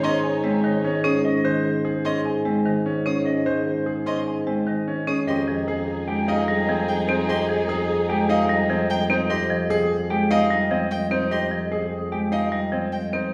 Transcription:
0.00 5.15 G#2 medium
0.00 0.30 C#4 medium
0.00 1.01 D#4 medium
0.00 1.01 C#5 medium
0.00 0.19 D#5 medium
0.00 0.30 C6 medium
0.04 0.18 C#5 medium
0.24 0.38 C#5 medium
0.24 0.50 G#5 medium
0.44 0.70 G#3 medium
0.44 0.70 C4 medium
0.44 0.58 C#5 medium
0.63 0.90 D#3 medium
0.63 0.79 C#5 soft
0.63 0.90 D#5 medium
0.84 1.11 C#4 medium
0.84 0.99 C#5 soft
1.04 1.31 C#4 medium
1.04 1.31 G#4 medium
1.04 1.24 C#5 medium
1.04 1.19 D#6 medium
1.25 1.51 D#5 medium
1.44 1.71 D#3 medium
1.44 1.71 C5 medium
1.65 1.91 C5 medium
1.85 2.11 G#4 medium
2.05 2.31 C#4 medium
2.05 2.20 D#5 medium
2.05 2.31 C6 medium
2.25 2.52 G#5 medium
2.45 2.72 G#3 medium
2.45 2.71 C4 medium
2.65 2.92 D#3 medium
2.65 2.92 D#5 medium
2.86 3.12 C#4 medium
3.06 3.32 C#4 medium
3.06 3.32 G#4 medium
3.06 3.32 C#5 medium
3.06 3.21 D#6 medium
3.25 3.52 D#5 medium
3.46 3.72 D#3 medium
3.46 3.72 C5 medium
3.66 3.92 C5 medium
3.86 4.13 G#4 medium
4.06 4.33 C#4 medium
4.06 4.22 D#5 medium
4.06 4.33 C6 medium
4.27 4.53 G#5 medium
4.47 4.73 G#3 medium
4.47 4.73 C4 medium
4.67 4.93 D#3 medium
4.67 4.93 D#5 medium
4.88 5.13 C#4 medium
5.07 5.33 C#4 medium
5.07 5.33 G#4 medium
5.07 5.33 C#5 medium
5.07 5.22 D#6 medium
5.27 13.21 F2 medium
5.27 9.06 D#4 medium
5.27 5.54 G4 medium
5.27 5.41 G#4 soft
5.27 9.06 G#4 medium
5.27 5.54 D#5 medium
5.27 5.43 C6 medium
5.47 5.74 F3 medium
5.47 5.62 G#4 medium
5.67 5.94 G#4 medium
5.67 5.82 G#4 medium
5.67 5.94 G#4 medium
5.87 6.02 G#4 medium
6.08 6.34 G#3 medium
6.08 6.34 G4 medium
6.08 6.22 G#4 medium
6.08 6.34 G5 medium
6.27 6.54 D#4 medium
6.27 6.42 G#4 medium
6.27 6.43 D#5 medium
6.27 6.54 F5 medium
6.47 6.74 G3 medium
6.47 6.62 G#4 medium
6.68 6.95 F3 medium
6.68 6.95 C4 medium
6.68 6.82 G#4 medium
6.68 6.94 D#5 medium
6.88 7.02 G#4 medium
6.88 7.04 G5 medium
7.08 7.35 C4 medium
7.08 7.35 D#4 medium
7.08 7.23 G#4 medium
7.08 7.28 C5 medium
7.29 7.55 G4 medium
7.29 7.43 G#4 medium
7.29 7.55 D#5 medium
7.29 7.44 C6 medium
7.49 7.75 F3 medium
7.49 7.63 G#4 medium
7.68 7.95 G#4 medium
7.68 7.83 G#4 medium
7.89 8.03 G#4 medium
8.09 8.36 G#3 medium
8.09 8.36 G4 medium
8.09 8.23 G#4 medium
8.09 8.29 G5 medium
8.29 8.55 D#4 loud
8.29 8.44 G#4 medium
8.29 8.45 D#5 medium
8.29 8.56 F5 medium
8.49 8.76 G3 medium
8.49 8.64 G#4 medium
8.70 8.96 F3 medium
8.70 8.96 C4 medium
8.70 8.84 G#4 soft
8.70 8.96 D#5 medium
8.90 9.04 G#4 soft
8.90 9.05 G5 loud
9.10 9.36 C4 loud
9.10 9.36 D#4 medium
9.10 9.36 C5 medium
9.30 9.56 G4 medium
9.30 9.56 D#5 loud
9.30 9.45 C6 medium
9.50 9.76 F3 medium
9.70 9.96 G#4 medium
9.70 9.96 G#4 loud
10.10 10.37 G#3 medium
10.10 10.37 G4 medium
10.10 10.30 G5 medium
10.30 10.57 D#4 medium
10.30 10.46 D#5 loud
10.30 10.57 F5 medium
10.50 10.77 G3 medium
10.71 10.97 F3 medium
10.71 10.97 C4 medium
10.71 10.97 D#5 medium
10.91 11.06 G5 medium
11.11 11.37 C4 medium
11.11 11.37 D#4 medium
11.11 11.38 C5 medium
11.31 11.57 G4 medium
11.31 11.58 D#5 medium
11.31 11.47 C6 medium
11.51 11.78 F3 medium
11.72 11.98 G#4 medium
12.12 12.38 G#3 medium
12.12 12.38 G4 medium
12.12 12.32 G5 medium
12.32 12.58 D#4 medium
12.32 12.47 D#5 medium
12.32 12.58 F5 medium
12.52 12.78 G3 medium
12.72 12.98 F3 medium
12.72 12.99 C4 medium
12.72 12.98 D#5 medium
12.92 13.08 G5 medium
13.13 13.34 C4 medium
13.13 13.34 D#4 medium
13.13 13.34 C5 medium

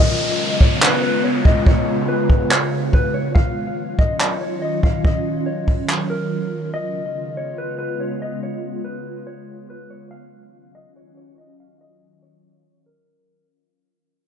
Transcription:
0.00 3.32 C#3 medium
0.00 3.32 G#3 medium
0.00 3.32 B3 medium
0.00 6.69 F4 medium
0.00 0.57 D#5 loud
0.00 downlifter medium
0.61 0.81 C#5 medium
0.61 kick medium
0.82 1.01 B4 medium
0.82 clap loud
1.02 1.23 B4 medium
1.24 1.44 C#5 medium
1.45 1.65 D#5 medium
1.45 kick loud
1.66 2.06 C#5 loud
1.66 kick loud
2.08 2.48 B4 medium
2.30 kick medium
2.51 2.91 C#5 loud
2.51 clap loud
2.93 3.14 B4 medium
2.93 kick medium
3.14 3.34 C#5 medium
3.35 6.70 D#3 medium
3.35 6.70 F#3 medium
3.35 6.70 C#4 medium
3.35 3.95 F5 loud
3.35 kick loud
3.99 4.19 D#5 medium
3.99 kick medium
4.20 4.40 C#5 medium
4.20 clap loud
4.41 4.61 C#5 medium
4.62 4.82 D#5 medium
4.83 5.04 F5 medium
4.83 kick medium
5.05 5.44 D#5 medium
5.05 kick loud
5.46 6.06 C#5 medium
5.68 kick medium
5.68 open hi-hat medium
5.89 clap loud
5.89 hi-hat pedal medium
6.10 6.70 A#4 medium
6.73 10.08 C#3 medium
6.73 10.08 G#3 medium
6.73 10.08 B3 medium
6.73 13.46 F4 medium
6.73 7.33 D#5 loud
7.37 7.57 C#5 medium
7.58 7.77 B4 medium
7.79 7.99 B4 medium
8.00 8.20 C#5 medium
8.22 8.42 D#5 medium
8.43 8.83 C#5 medium
8.84 9.24 B4 medium
9.27 9.67 C#5 medium
9.70 9.90 B4 medium
9.90 10.10 C#5 medium
10.11 13.46 D#3 medium
10.11 13.46 F#3 medium
10.11 13.46 C#4 medium
10.11 10.71 F5 loud
10.75 10.95 D#5 medium
10.96 11.16 C#5 medium
11.17 11.37 C#5 medium
11.38 11.58 D#5 medium
11.60 11.80 F5 medium
11.81 12.21 D#5 medium
12.23 12.82 C#5 medium
12.86 13.46 A#4 medium

